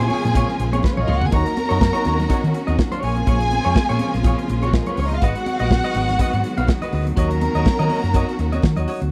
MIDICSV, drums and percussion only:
0, 0, Header, 1, 2, 480
1, 0, Start_track
1, 0, Key_signature, -6, "minor"
1, 0, Tempo, 487013
1, 1308, Time_signature, 4, 2, 24, 8
1, 8986, End_track
2, 0, Start_track
2, 0, Title_t, "Drums"
2, 1, Note_on_c, 9, 42, 51
2, 99, Note_on_c, 9, 62, 42
2, 99, Note_on_c, 9, 63, 80
2, 100, Note_off_c, 9, 42, 0
2, 103, Note_on_c, 9, 46, 75
2, 198, Note_off_c, 9, 62, 0
2, 198, Note_off_c, 9, 63, 0
2, 202, Note_off_c, 9, 46, 0
2, 246, Note_on_c, 9, 64, 72
2, 249, Note_on_c, 9, 38, 38
2, 249, Note_on_c, 9, 42, 44
2, 340, Note_on_c, 9, 62, 39
2, 340, Note_on_c, 9, 63, 88
2, 345, Note_off_c, 9, 64, 0
2, 347, Note_off_c, 9, 42, 0
2, 347, Note_on_c, 9, 36, 105
2, 348, Note_off_c, 9, 38, 0
2, 349, Note_on_c, 9, 42, 85
2, 438, Note_off_c, 9, 62, 0
2, 438, Note_off_c, 9, 63, 0
2, 445, Note_off_c, 9, 36, 0
2, 447, Note_off_c, 9, 42, 0
2, 488, Note_on_c, 9, 42, 42
2, 587, Note_off_c, 9, 42, 0
2, 587, Note_on_c, 9, 42, 60
2, 587, Note_on_c, 9, 62, 43
2, 685, Note_off_c, 9, 62, 0
2, 686, Note_off_c, 9, 42, 0
2, 721, Note_on_c, 9, 42, 51
2, 721, Note_on_c, 9, 63, 82
2, 818, Note_on_c, 9, 62, 40
2, 820, Note_off_c, 9, 42, 0
2, 820, Note_off_c, 9, 63, 0
2, 828, Note_on_c, 9, 36, 110
2, 832, Note_on_c, 9, 38, 73
2, 916, Note_off_c, 9, 62, 0
2, 926, Note_off_c, 9, 36, 0
2, 931, Note_off_c, 9, 38, 0
2, 959, Note_on_c, 9, 48, 65
2, 959, Note_on_c, 9, 64, 70
2, 1058, Note_off_c, 9, 48, 0
2, 1058, Note_off_c, 9, 64, 0
2, 1063, Note_on_c, 9, 45, 88
2, 1074, Note_on_c, 9, 62, 40
2, 1161, Note_off_c, 9, 45, 0
2, 1172, Note_off_c, 9, 62, 0
2, 1196, Note_on_c, 9, 43, 101
2, 1203, Note_on_c, 9, 63, 53
2, 1295, Note_off_c, 9, 43, 0
2, 1301, Note_on_c, 9, 49, 77
2, 1302, Note_off_c, 9, 63, 0
2, 1306, Note_on_c, 9, 36, 107
2, 1314, Note_on_c, 9, 62, 36
2, 1400, Note_off_c, 9, 49, 0
2, 1405, Note_off_c, 9, 36, 0
2, 1412, Note_off_c, 9, 62, 0
2, 1439, Note_on_c, 9, 42, 53
2, 1538, Note_off_c, 9, 42, 0
2, 1545, Note_on_c, 9, 42, 72
2, 1550, Note_on_c, 9, 62, 36
2, 1550, Note_on_c, 9, 63, 77
2, 1643, Note_off_c, 9, 42, 0
2, 1648, Note_off_c, 9, 62, 0
2, 1648, Note_off_c, 9, 63, 0
2, 1676, Note_on_c, 9, 42, 48
2, 1775, Note_off_c, 9, 42, 0
2, 1783, Note_on_c, 9, 63, 77
2, 1786, Note_on_c, 9, 36, 127
2, 1792, Note_on_c, 9, 38, 121
2, 1881, Note_off_c, 9, 63, 0
2, 1884, Note_off_c, 9, 36, 0
2, 1891, Note_off_c, 9, 38, 0
2, 1917, Note_on_c, 9, 42, 49
2, 2015, Note_off_c, 9, 42, 0
2, 2019, Note_on_c, 9, 42, 70
2, 2023, Note_on_c, 9, 62, 40
2, 2023, Note_on_c, 9, 63, 82
2, 2118, Note_off_c, 9, 42, 0
2, 2122, Note_off_c, 9, 62, 0
2, 2122, Note_off_c, 9, 63, 0
2, 2165, Note_on_c, 9, 38, 33
2, 2165, Note_on_c, 9, 42, 46
2, 2165, Note_on_c, 9, 64, 80
2, 2260, Note_on_c, 9, 62, 40
2, 2260, Note_on_c, 9, 63, 78
2, 2263, Note_off_c, 9, 64, 0
2, 2264, Note_off_c, 9, 38, 0
2, 2264, Note_off_c, 9, 42, 0
2, 2264, Note_on_c, 9, 42, 80
2, 2265, Note_on_c, 9, 36, 100
2, 2358, Note_off_c, 9, 62, 0
2, 2358, Note_off_c, 9, 63, 0
2, 2363, Note_off_c, 9, 36, 0
2, 2363, Note_off_c, 9, 42, 0
2, 2407, Note_on_c, 9, 42, 45
2, 2505, Note_off_c, 9, 42, 0
2, 2507, Note_on_c, 9, 42, 59
2, 2606, Note_off_c, 9, 42, 0
2, 2638, Note_on_c, 9, 42, 46
2, 2638, Note_on_c, 9, 63, 82
2, 2737, Note_off_c, 9, 42, 0
2, 2737, Note_off_c, 9, 63, 0
2, 2747, Note_on_c, 9, 36, 127
2, 2751, Note_on_c, 9, 38, 116
2, 2845, Note_off_c, 9, 36, 0
2, 2850, Note_off_c, 9, 38, 0
2, 2873, Note_on_c, 9, 64, 65
2, 2878, Note_on_c, 9, 42, 54
2, 2971, Note_off_c, 9, 64, 0
2, 2977, Note_off_c, 9, 42, 0
2, 2983, Note_on_c, 9, 46, 65
2, 2985, Note_on_c, 9, 62, 37
2, 3081, Note_off_c, 9, 46, 0
2, 3084, Note_off_c, 9, 62, 0
2, 3113, Note_on_c, 9, 63, 52
2, 3119, Note_on_c, 9, 42, 53
2, 3212, Note_off_c, 9, 63, 0
2, 3217, Note_off_c, 9, 42, 0
2, 3222, Note_on_c, 9, 42, 85
2, 3224, Note_on_c, 9, 36, 112
2, 3321, Note_off_c, 9, 42, 0
2, 3323, Note_off_c, 9, 36, 0
2, 3356, Note_on_c, 9, 42, 51
2, 3454, Note_off_c, 9, 42, 0
2, 3460, Note_on_c, 9, 62, 35
2, 3460, Note_on_c, 9, 63, 71
2, 3462, Note_on_c, 9, 42, 73
2, 3558, Note_off_c, 9, 62, 0
2, 3558, Note_off_c, 9, 63, 0
2, 3560, Note_off_c, 9, 42, 0
2, 3593, Note_on_c, 9, 42, 41
2, 3692, Note_off_c, 9, 42, 0
2, 3695, Note_on_c, 9, 62, 32
2, 3695, Note_on_c, 9, 63, 73
2, 3703, Note_on_c, 9, 36, 127
2, 3709, Note_on_c, 9, 38, 125
2, 3793, Note_off_c, 9, 62, 0
2, 3793, Note_off_c, 9, 63, 0
2, 3801, Note_off_c, 9, 36, 0
2, 3808, Note_off_c, 9, 38, 0
2, 3838, Note_on_c, 9, 42, 49
2, 3934, Note_on_c, 9, 62, 41
2, 3934, Note_on_c, 9, 63, 90
2, 3935, Note_off_c, 9, 42, 0
2, 3935, Note_on_c, 9, 42, 67
2, 4033, Note_off_c, 9, 62, 0
2, 4033, Note_off_c, 9, 63, 0
2, 4034, Note_off_c, 9, 42, 0
2, 4080, Note_on_c, 9, 64, 86
2, 4081, Note_on_c, 9, 38, 39
2, 4081, Note_on_c, 9, 42, 41
2, 4172, Note_on_c, 9, 63, 87
2, 4179, Note_off_c, 9, 64, 0
2, 4180, Note_off_c, 9, 38, 0
2, 4180, Note_off_c, 9, 42, 0
2, 4182, Note_on_c, 9, 36, 116
2, 4182, Note_on_c, 9, 42, 74
2, 4271, Note_off_c, 9, 63, 0
2, 4280, Note_off_c, 9, 36, 0
2, 4280, Note_off_c, 9, 42, 0
2, 4323, Note_on_c, 9, 42, 44
2, 4418, Note_on_c, 9, 62, 42
2, 4421, Note_off_c, 9, 42, 0
2, 4429, Note_on_c, 9, 42, 58
2, 4517, Note_off_c, 9, 62, 0
2, 4527, Note_off_c, 9, 42, 0
2, 4552, Note_on_c, 9, 63, 76
2, 4560, Note_on_c, 9, 42, 50
2, 4651, Note_off_c, 9, 63, 0
2, 4658, Note_off_c, 9, 42, 0
2, 4666, Note_on_c, 9, 36, 115
2, 4669, Note_on_c, 9, 38, 121
2, 4765, Note_off_c, 9, 36, 0
2, 4768, Note_off_c, 9, 38, 0
2, 4793, Note_on_c, 9, 64, 73
2, 4794, Note_on_c, 9, 42, 53
2, 4892, Note_off_c, 9, 64, 0
2, 4893, Note_off_c, 9, 42, 0
2, 4900, Note_on_c, 9, 46, 67
2, 4908, Note_on_c, 9, 62, 40
2, 4999, Note_off_c, 9, 46, 0
2, 5007, Note_off_c, 9, 62, 0
2, 5035, Note_on_c, 9, 63, 55
2, 5038, Note_on_c, 9, 42, 47
2, 5133, Note_off_c, 9, 63, 0
2, 5137, Note_off_c, 9, 42, 0
2, 5142, Note_on_c, 9, 42, 77
2, 5145, Note_on_c, 9, 36, 103
2, 5240, Note_off_c, 9, 42, 0
2, 5244, Note_off_c, 9, 36, 0
2, 5278, Note_on_c, 9, 42, 52
2, 5377, Note_off_c, 9, 42, 0
2, 5384, Note_on_c, 9, 62, 35
2, 5384, Note_on_c, 9, 63, 69
2, 5385, Note_on_c, 9, 42, 70
2, 5483, Note_off_c, 9, 42, 0
2, 5483, Note_off_c, 9, 62, 0
2, 5483, Note_off_c, 9, 63, 0
2, 5515, Note_on_c, 9, 42, 44
2, 5614, Note_off_c, 9, 42, 0
2, 5622, Note_on_c, 9, 62, 32
2, 5622, Note_on_c, 9, 63, 73
2, 5626, Note_on_c, 9, 36, 120
2, 5633, Note_on_c, 9, 38, 127
2, 5721, Note_off_c, 9, 62, 0
2, 5721, Note_off_c, 9, 63, 0
2, 5724, Note_off_c, 9, 36, 0
2, 5732, Note_off_c, 9, 38, 0
2, 5762, Note_on_c, 9, 42, 52
2, 5859, Note_off_c, 9, 42, 0
2, 5859, Note_on_c, 9, 42, 71
2, 5864, Note_on_c, 9, 63, 93
2, 5957, Note_off_c, 9, 42, 0
2, 5963, Note_off_c, 9, 63, 0
2, 6002, Note_on_c, 9, 42, 44
2, 6003, Note_on_c, 9, 38, 37
2, 6008, Note_on_c, 9, 64, 81
2, 6101, Note_off_c, 9, 38, 0
2, 6101, Note_off_c, 9, 42, 0
2, 6101, Note_on_c, 9, 63, 85
2, 6102, Note_on_c, 9, 42, 83
2, 6104, Note_on_c, 9, 36, 103
2, 6106, Note_off_c, 9, 64, 0
2, 6200, Note_off_c, 9, 42, 0
2, 6200, Note_off_c, 9, 63, 0
2, 6202, Note_off_c, 9, 36, 0
2, 6241, Note_on_c, 9, 42, 41
2, 6340, Note_off_c, 9, 42, 0
2, 6346, Note_on_c, 9, 42, 57
2, 6352, Note_on_c, 9, 62, 41
2, 6444, Note_off_c, 9, 42, 0
2, 6450, Note_off_c, 9, 62, 0
2, 6481, Note_on_c, 9, 42, 48
2, 6482, Note_on_c, 9, 63, 86
2, 6579, Note_off_c, 9, 42, 0
2, 6580, Note_off_c, 9, 63, 0
2, 6581, Note_on_c, 9, 62, 42
2, 6588, Note_on_c, 9, 36, 122
2, 6593, Note_on_c, 9, 38, 117
2, 6680, Note_off_c, 9, 62, 0
2, 6687, Note_off_c, 9, 36, 0
2, 6692, Note_off_c, 9, 38, 0
2, 6718, Note_on_c, 9, 64, 68
2, 6722, Note_on_c, 9, 42, 53
2, 6816, Note_off_c, 9, 64, 0
2, 6820, Note_off_c, 9, 42, 0
2, 6826, Note_on_c, 9, 46, 71
2, 6831, Note_on_c, 9, 62, 37
2, 6925, Note_off_c, 9, 46, 0
2, 6929, Note_off_c, 9, 62, 0
2, 6958, Note_on_c, 9, 63, 48
2, 6967, Note_on_c, 9, 42, 57
2, 7056, Note_off_c, 9, 63, 0
2, 7065, Note_off_c, 9, 42, 0
2, 7066, Note_on_c, 9, 42, 78
2, 7067, Note_on_c, 9, 62, 37
2, 7068, Note_on_c, 9, 36, 111
2, 7165, Note_off_c, 9, 42, 0
2, 7166, Note_off_c, 9, 62, 0
2, 7167, Note_off_c, 9, 36, 0
2, 7200, Note_on_c, 9, 42, 55
2, 7299, Note_off_c, 9, 42, 0
2, 7307, Note_on_c, 9, 62, 39
2, 7307, Note_on_c, 9, 63, 78
2, 7308, Note_on_c, 9, 42, 73
2, 7406, Note_off_c, 9, 42, 0
2, 7406, Note_off_c, 9, 62, 0
2, 7406, Note_off_c, 9, 63, 0
2, 7440, Note_on_c, 9, 42, 47
2, 7538, Note_on_c, 9, 62, 34
2, 7538, Note_on_c, 9, 63, 73
2, 7539, Note_off_c, 9, 42, 0
2, 7548, Note_on_c, 9, 36, 127
2, 7555, Note_on_c, 9, 38, 127
2, 7637, Note_off_c, 9, 62, 0
2, 7637, Note_off_c, 9, 63, 0
2, 7646, Note_off_c, 9, 36, 0
2, 7653, Note_off_c, 9, 38, 0
2, 7682, Note_on_c, 9, 42, 49
2, 7780, Note_off_c, 9, 42, 0
2, 7780, Note_on_c, 9, 62, 38
2, 7780, Note_on_c, 9, 63, 86
2, 7781, Note_on_c, 9, 46, 78
2, 7879, Note_off_c, 9, 46, 0
2, 7879, Note_off_c, 9, 62, 0
2, 7879, Note_off_c, 9, 63, 0
2, 7923, Note_on_c, 9, 64, 72
2, 7924, Note_on_c, 9, 38, 39
2, 7924, Note_on_c, 9, 42, 38
2, 8020, Note_on_c, 9, 62, 42
2, 8020, Note_on_c, 9, 63, 82
2, 8021, Note_off_c, 9, 64, 0
2, 8022, Note_off_c, 9, 42, 0
2, 8023, Note_off_c, 9, 38, 0
2, 8025, Note_on_c, 9, 42, 81
2, 8026, Note_on_c, 9, 36, 101
2, 8119, Note_off_c, 9, 62, 0
2, 8119, Note_off_c, 9, 63, 0
2, 8124, Note_off_c, 9, 36, 0
2, 8124, Note_off_c, 9, 42, 0
2, 8169, Note_on_c, 9, 42, 46
2, 8267, Note_off_c, 9, 42, 0
2, 8268, Note_on_c, 9, 42, 56
2, 8268, Note_on_c, 9, 62, 37
2, 8367, Note_off_c, 9, 42, 0
2, 8367, Note_off_c, 9, 62, 0
2, 8401, Note_on_c, 9, 63, 76
2, 8405, Note_on_c, 9, 42, 43
2, 8500, Note_off_c, 9, 63, 0
2, 8500, Note_on_c, 9, 62, 38
2, 8503, Note_off_c, 9, 42, 0
2, 8509, Note_on_c, 9, 36, 118
2, 8514, Note_on_c, 9, 38, 127
2, 8599, Note_off_c, 9, 62, 0
2, 8608, Note_off_c, 9, 36, 0
2, 8613, Note_off_c, 9, 38, 0
2, 8634, Note_on_c, 9, 64, 68
2, 8644, Note_on_c, 9, 42, 60
2, 8732, Note_off_c, 9, 64, 0
2, 8742, Note_off_c, 9, 42, 0
2, 8749, Note_on_c, 9, 46, 70
2, 8750, Note_on_c, 9, 62, 40
2, 8848, Note_off_c, 9, 46, 0
2, 8848, Note_off_c, 9, 62, 0
2, 8878, Note_on_c, 9, 63, 46
2, 8887, Note_on_c, 9, 42, 56
2, 8977, Note_off_c, 9, 63, 0
2, 8986, Note_off_c, 9, 42, 0
2, 8986, End_track
0, 0, End_of_file